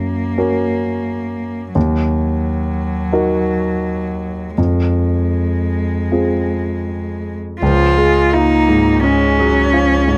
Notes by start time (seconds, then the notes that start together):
Already playing: F#2 A#3
0.38 C#4 F#4 A#4
1.74 D#2 F#3
3.12 D#4 F#4 A#4
4.56 F2 G#3
6.12 C4 F4 G#4
7.61 C#2 F3 F4
7.98 G#3 G#4
8.33 A#3 D#4 F4
8.69 G#2
9.03 G#3 C#4
9.39 F#3 G#4
9.73 F3 F4
10.08 G#2 G#3